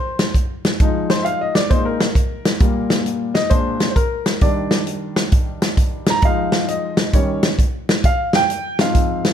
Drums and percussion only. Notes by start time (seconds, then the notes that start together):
0.19 snare, closed hi-hat
0.34 kick, closed hi-hat
0.65 snare, closed hi-hat
0.80 kick, closed hi-hat
1.10 snare, closed hi-hat
1.26 closed hi-hat
1.55 snare, closed hi-hat
1.71 kick, closed hi-hat
2.00 snare, closed hi-hat
2.15 kick, closed hi-hat
2.45 snare, closed hi-hat
2.60 kick, closed hi-hat
2.90 snare, closed hi-hat
3.06 closed hi-hat
3.35 snare, closed hi-hat
3.50 kick, closed hi-hat
3.80 snare, closed hi-hat
3.96 kick, closed hi-hat
4.26 snare, closed hi-hat
4.41 kick, closed hi-hat
4.71 snare, closed hi-hat
4.87 closed hi-hat
5.16 snare, closed hi-hat
5.32 kick, closed hi-hat
5.62 snare, closed hi-hat
5.77 kick, closed hi-hat
6.06 snare, closed hi-hat
6.22 kick, closed hi-hat
6.52 snare, closed hi-hat
6.68 closed hi-hat
6.97 snare, closed hi-hat
7.13 kick, closed hi-hat
7.43 snare, closed hi-hat
7.59 kick, closed hi-hat
7.89 snare, closed hi-hat
8.04 kick, closed hi-hat
8.33 snare, closed hi-hat
8.50 closed hi-hat
8.79 snare, closed hi-hat
8.95 kick, closed hi-hat
9.25 snare, closed hi-hat